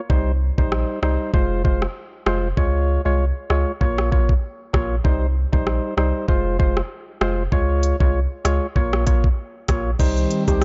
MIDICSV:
0, 0, Header, 1, 6, 480
1, 0, Start_track
1, 0, Tempo, 618557
1, 77, Time_signature, 4, 2, 24, 8
1, 8261, End_track
2, 0, Start_track
2, 0, Title_t, "Steel pan"
2, 0, Program_c, 0, 114
2, 8132, Note_on_c, 0, 67, 70
2, 8215, Note_off_c, 0, 67, 0
2, 8261, End_track
3, 0, Start_track
3, 0, Title_t, "Synth stab"
3, 0, Program_c, 1, 62
3, 74, Note_on_c, 1, 55, 93
3, 76, Note_on_c, 1, 63, 86
3, 79, Note_on_c, 1, 72, 104
3, 245, Note_off_c, 1, 55, 0
3, 246, Note_off_c, 1, 63, 0
3, 247, Note_off_c, 1, 72, 0
3, 449, Note_on_c, 1, 55, 76
3, 451, Note_on_c, 1, 63, 70
3, 454, Note_on_c, 1, 72, 85
3, 771, Note_off_c, 1, 55, 0
3, 772, Note_off_c, 1, 63, 0
3, 773, Note_off_c, 1, 72, 0
3, 795, Note_on_c, 1, 55, 75
3, 797, Note_on_c, 1, 63, 72
3, 800, Note_on_c, 1, 72, 85
3, 1019, Note_off_c, 1, 55, 0
3, 1020, Note_off_c, 1, 63, 0
3, 1022, Note_off_c, 1, 72, 0
3, 1035, Note_on_c, 1, 56, 92
3, 1038, Note_on_c, 1, 65, 85
3, 1040, Note_on_c, 1, 72, 100
3, 1259, Note_off_c, 1, 56, 0
3, 1261, Note_off_c, 1, 65, 0
3, 1262, Note_off_c, 1, 72, 0
3, 1275, Note_on_c, 1, 56, 79
3, 1278, Note_on_c, 1, 65, 70
3, 1280, Note_on_c, 1, 72, 82
3, 1446, Note_off_c, 1, 56, 0
3, 1447, Note_off_c, 1, 65, 0
3, 1448, Note_off_c, 1, 72, 0
3, 1755, Note_on_c, 1, 56, 73
3, 1757, Note_on_c, 1, 65, 68
3, 1760, Note_on_c, 1, 72, 80
3, 1925, Note_off_c, 1, 56, 0
3, 1927, Note_off_c, 1, 65, 0
3, 1928, Note_off_c, 1, 72, 0
3, 1995, Note_on_c, 1, 56, 93
3, 1997, Note_on_c, 1, 65, 83
3, 1999, Note_on_c, 1, 73, 102
3, 2338, Note_off_c, 1, 56, 0
3, 2339, Note_off_c, 1, 65, 0
3, 2340, Note_off_c, 1, 73, 0
3, 2369, Note_on_c, 1, 56, 76
3, 2371, Note_on_c, 1, 65, 68
3, 2373, Note_on_c, 1, 73, 85
3, 2520, Note_off_c, 1, 56, 0
3, 2521, Note_off_c, 1, 65, 0
3, 2522, Note_off_c, 1, 73, 0
3, 2715, Note_on_c, 1, 56, 74
3, 2717, Note_on_c, 1, 65, 67
3, 2720, Note_on_c, 1, 73, 82
3, 2885, Note_off_c, 1, 56, 0
3, 2886, Note_off_c, 1, 65, 0
3, 2888, Note_off_c, 1, 73, 0
3, 2955, Note_on_c, 1, 58, 88
3, 2957, Note_on_c, 1, 65, 81
3, 2959, Note_on_c, 1, 73, 100
3, 3179, Note_off_c, 1, 58, 0
3, 3180, Note_off_c, 1, 65, 0
3, 3181, Note_off_c, 1, 73, 0
3, 3194, Note_on_c, 1, 58, 77
3, 3197, Note_on_c, 1, 65, 70
3, 3199, Note_on_c, 1, 73, 83
3, 3365, Note_off_c, 1, 58, 0
3, 3366, Note_off_c, 1, 65, 0
3, 3367, Note_off_c, 1, 73, 0
3, 3674, Note_on_c, 1, 58, 75
3, 3676, Note_on_c, 1, 65, 70
3, 3678, Note_on_c, 1, 73, 86
3, 3845, Note_off_c, 1, 58, 0
3, 3846, Note_off_c, 1, 65, 0
3, 3847, Note_off_c, 1, 73, 0
3, 3914, Note_on_c, 1, 55, 89
3, 3916, Note_on_c, 1, 63, 84
3, 3919, Note_on_c, 1, 72, 99
3, 4085, Note_off_c, 1, 55, 0
3, 4086, Note_off_c, 1, 63, 0
3, 4087, Note_off_c, 1, 72, 0
3, 4288, Note_on_c, 1, 55, 79
3, 4291, Note_on_c, 1, 63, 68
3, 4293, Note_on_c, 1, 72, 83
3, 4610, Note_off_c, 1, 55, 0
3, 4611, Note_off_c, 1, 63, 0
3, 4613, Note_off_c, 1, 72, 0
3, 4634, Note_on_c, 1, 55, 77
3, 4636, Note_on_c, 1, 63, 68
3, 4638, Note_on_c, 1, 72, 81
3, 4859, Note_off_c, 1, 55, 0
3, 4860, Note_off_c, 1, 63, 0
3, 4861, Note_off_c, 1, 72, 0
3, 4874, Note_on_c, 1, 56, 88
3, 4877, Note_on_c, 1, 65, 86
3, 4879, Note_on_c, 1, 72, 103
3, 5099, Note_off_c, 1, 56, 0
3, 5100, Note_off_c, 1, 65, 0
3, 5101, Note_off_c, 1, 72, 0
3, 5114, Note_on_c, 1, 56, 79
3, 5116, Note_on_c, 1, 65, 71
3, 5119, Note_on_c, 1, 72, 89
3, 5285, Note_off_c, 1, 56, 0
3, 5286, Note_off_c, 1, 65, 0
3, 5287, Note_off_c, 1, 72, 0
3, 5595, Note_on_c, 1, 56, 76
3, 5597, Note_on_c, 1, 65, 68
3, 5600, Note_on_c, 1, 72, 81
3, 5765, Note_off_c, 1, 56, 0
3, 5767, Note_off_c, 1, 65, 0
3, 5768, Note_off_c, 1, 72, 0
3, 5834, Note_on_c, 1, 56, 97
3, 5836, Note_on_c, 1, 65, 88
3, 5839, Note_on_c, 1, 73, 101
3, 6178, Note_off_c, 1, 56, 0
3, 6179, Note_off_c, 1, 65, 0
3, 6180, Note_off_c, 1, 73, 0
3, 6209, Note_on_c, 1, 56, 78
3, 6211, Note_on_c, 1, 65, 71
3, 6213, Note_on_c, 1, 73, 82
3, 6360, Note_off_c, 1, 56, 0
3, 6361, Note_off_c, 1, 65, 0
3, 6362, Note_off_c, 1, 73, 0
3, 6554, Note_on_c, 1, 56, 76
3, 6556, Note_on_c, 1, 65, 73
3, 6559, Note_on_c, 1, 73, 88
3, 6725, Note_off_c, 1, 56, 0
3, 6726, Note_off_c, 1, 65, 0
3, 6727, Note_off_c, 1, 73, 0
3, 6794, Note_on_c, 1, 58, 89
3, 6796, Note_on_c, 1, 65, 84
3, 6799, Note_on_c, 1, 73, 103
3, 7019, Note_off_c, 1, 58, 0
3, 7020, Note_off_c, 1, 65, 0
3, 7021, Note_off_c, 1, 73, 0
3, 7034, Note_on_c, 1, 58, 80
3, 7036, Note_on_c, 1, 65, 70
3, 7038, Note_on_c, 1, 73, 85
3, 7205, Note_off_c, 1, 58, 0
3, 7206, Note_off_c, 1, 65, 0
3, 7207, Note_off_c, 1, 73, 0
3, 7515, Note_on_c, 1, 58, 77
3, 7517, Note_on_c, 1, 65, 66
3, 7520, Note_on_c, 1, 73, 85
3, 7685, Note_off_c, 1, 58, 0
3, 7687, Note_off_c, 1, 65, 0
3, 7688, Note_off_c, 1, 73, 0
3, 7754, Note_on_c, 1, 55, 92
3, 7757, Note_on_c, 1, 63, 85
3, 7759, Note_on_c, 1, 72, 101
3, 8098, Note_off_c, 1, 55, 0
3, 8099, Note_off_c, 1, 63, 0
3, 8100, Note_off_c, 1, 72, 0
3, 8129, Note_on_c, 1, 55, 75
3, 8131, Note_on_c, 1, 63, 73
3, 8134, Note_on_c, 1, 72, 88
3, 8261, Note_off_c, 1, 55, 0
3, 8261, Note_off_c, 1, 63, 0
3, 8261, Note_off_c, 1, 72, 0
3, 8261, End_track
4, 0, Start_track
4, 0, Title_t, "Analog synth pad"
4, 0, Program_c, 2, 89
4, 7756, Note_on_c, 2, 51, 74
4, 7756, Note_on_c, 2, 55, 65
4, 7756, Note_on_c, 2, 60, 79
4, 8261, Note_off_c, 2, 51, 0
4, 8261, Note_off_c, 2, 55, 0
4, 8261, Note_off_c, 2, 60, 0
4, 8261, End_track
5, 0, Start_track
5, 0, Title_t, "Sub bass"
5, 0, Program_c, 3, 38
5, 77, Note_on_c, 3, 36, 104
5, 395, Note_off_c, 3, 36, 0
5, 452, Note_on_c, 3, 34, 97
5, 656, Note_off_c, 3, 34, 0
5, 796, Note_on_c, 3, 36, 98
5, 911, Note_off_c, 3, 36, 0
5, 1038, Note_on_c, 3, 29, 107
5, 1445, Note_off_c, 3, 29, 0
5, 1757, Note_on_c, 3, 29, 87
5, 1961, Note_off_c, 3, 29, 0
5, 1997, Note_on_c, 3, 37, 118
5, 2315, Note_off_c, 3, 37, 0
5, 2372, Note_on_c, 3, 36, 94
5, 2575, Note_off_c, 3, 36, 0
5, 2717, Note_on_c, 3, 37, 96
5, 2831, Note_off_c, 3, 37, 0
5, 2957, Note_on_c, 3, 34, 108
5, 3365, Note_off_c, 3, 34, 0
5, 3678, Note_on_c, 3, 34, 97
5, 3881, Note_off_c, 3, 34, 0
5, 3917, Note_on_c, 3, 36, 109
5, 4235, Note_off_c, 3, 36, 0
5, 4292, Note_on_c, 3, 34, 93
5, 4496, Note_off_c, 3, 34, 0
5, 4637, Note_on_c, 3, 36, 93
5, 4751, Note_off_c, 3, 36, 0
5, 4877, Note_on_c, 3, 29, 112
5, 5285, Note_off_c, 3, 29, 0
5, 5597, Note_on_c, 3, 29, 83
5, 5801, Note_off_c, 3, 29, 0
5, 5837, Note_on_c, 3, 37, 113
5, 6155, Note_off_c, 3, 37, 0
5, 6212, Note_on_c, 3, 36, 96
5, 6415, Note_off_c, 3, 36, 0
5, 6557, Note_on_c, 3, 37, 97
5, 6671, Note_off_c, 3, 37, 0
5, 6797, Note_on_c, 3, 34, 106
5, 7205, Note_off_c, 3, 34, 0
5, 7517, Note_on_c, 3, 34, 93
5, 7721, Note_off_c, 3, 34, 0
5, 7757, Note_on_c, 3, 36, 106
5, 7961, Note_off_c, 3, 36, 0
5, 8132, Note_on_c, 3, 37, 94
5, 8261, Note_off_c, 3, 37, 0
5, 8261, End_track
6, 0, Start_track
6, 0, Title_t, "Drums"
6, 77, Note_on_c, 9, 36, 107
6, 155, Note_off_c, 9, 36, 0
6, 452, Note_on_c, 9, 36, 96
6, 529, Note_off_c, 9, 36, 0
6, 558, Note_on_c, 9, 37, 89
6, 636, Note_off_c, 9, 37, 0
6, 797, Note_on_c, 9, 37, 82
6, 875, Note_off_c, 9, 37, 0
6, 1037, Note_on_c, 9, 36, 91
6, 1115, Note_off_c, 9, 36, 0
6, 1279, Note_on_c, 9, 36, 90
6, 1357, Note_off_c, 9, 36, 0
6, 1413, Note_on_c, 9, 37, 88
6, 1490, Note_off_c, 9, 37, 0
6, 1757, Note_on_c, 9, 37, 101
6, 1835, Note_off_c, 9, 37, 0
6, 1997, Note_on_c, 9, 36, 106
6, 2075, Note_off_c, 9, 36, 0
6, 2717, Note_on_c, 9, 37, 82
6, 2795, Note_off_c, 9, 37, 0
6, 2957, Note_on_c, 9, 36, 87
6, 3035, Note_off_c, 9, 36, 0
6, 3092, Note_on_c, 9, 37, 96
6, 3169, Note_off_c, 9, 37, 0
6, 3200, Note_on_c, 9, 36, 87
6, 3277, Note_off_c, 9, 36, 0
6, 3331, Note_on_c, 9, 36, 88
6, 3409, Note_off_c, 9, 36, 0
6, 3678, Note_on_c, 9, 36, 92
6, 3678, Note_on_c, 9, 37, 104
6, 3755, Note_off_c, 9, 36, 0
6, 3756, Note_off_c, 9, 37, 0
6, 3917, Note_on_c, 9, 36, 106
6, 3995, Note_off_c, 9, 36, 0
6, 4292, Note_on_c, 9, 36, 94
6, 4369, Note_off_c, 9, 36, 0
6, 4398, Note_on_c, 9, 37, 88
6, 4476, Note_off_c, 9, 37, 0
6, 4638, Note_on_c, 9, 37, 84
6, 4715, Note_off_c, 9, 37, 0
6, 4877, Note_on_c, 9, 36, 90
6, 4955, Note_off_c, 9, 36, 0
6, 5119, Note_on_c, 9, 36, 90
6, 5197, Note_off_c, 9, 36, 0
6, 5252, Note_on_c, 9, 37, 88
6, 5330, Note_off_c, 9, 37, 0
6, 5597, Note_on_c, 9, 37, 105
6, 5675, Note_off_c, 9, 37, 0
6, 5837, Note_on_c, 9, 36, 108
6, 5914, Note_off_c, 9, 36, 0
6, 6077, Note_on_c, 9, 42, 70
6, 6154, Note_off_c, 9, 42, 0
6, 6211, Note_on_c, 9, 36, 88
6, 6289, Note_off_c, 9, 36, 0
6, 6557, Note_on_c, 9, 37, 80
6, 6558, Note_on_c, 9, 42, 77
6, 6635, Note_off_c, 9, 37, 0
6, 6635, Note_off_c, 9, 42, 0
6, 6797, Note_on_c, 9, 36, 87
6, 6875, Note_off_c, 9, 36, 0
6, 6931, Note_on_c, 9, 37, 96
6, 7009, Note_off_c, 9, 37, 0
6, 7035, Note_on_c, 9, 42, 62
6, 7039, Note_on_c, 9, 36, 88
6, 7113, Note_off_c, 9, 42, 0
6, 7117, Note_off_c, 9, 36, 0
6, 7171, Note_on_c, 9, 36, 88
6, 7248, Note_off_c, 9, 36, 0
6, 7515, Note_on_c, 9, 42, 81
6, 7518, Note_on_c, 9, 36, 92
6, 7518, Note_on_c, 9, 37, 103
6, 7592, Note_off_c, 9, 42, 0
6, 7595, Note_off_c, 9, 36, 0
6, 7595, Note_off_c, 9, 37, 0
6, 7757, Note_on_c, 9, 36, 102
6, 7757, Note_on_c, 9, 49, 92
6, 7757, Note_on_c, 9, 82, 77
6, 7834, Note_off_c, 9, 36, 0
6, 7834, Note_off_c, 9, 82, 0
6, 7835, Note_off_c, 9, 49, 0
6, 7891, Note_on_c, 9, 82, 54
6, 7968, Note_off_c, 9, 82, 0
6, 7997, Note_on_c, 9, 42, 68
6, 7997, Note_on_c, 9, 82, 52
6, 8075, Note_off_c, 9, 42, 0
6, 8075, Note_off_c, 9, 82, 0
6, 8131, Note_on_c, 9, 82, 73
6, 8132, Note_on_c, 9, 36, 91
6, 8209, Note_off_c, 9, 36, 0
6, 8209, Note_off_c, 9, 82, 0
6, 8261, End_track
0, 0, End_of_file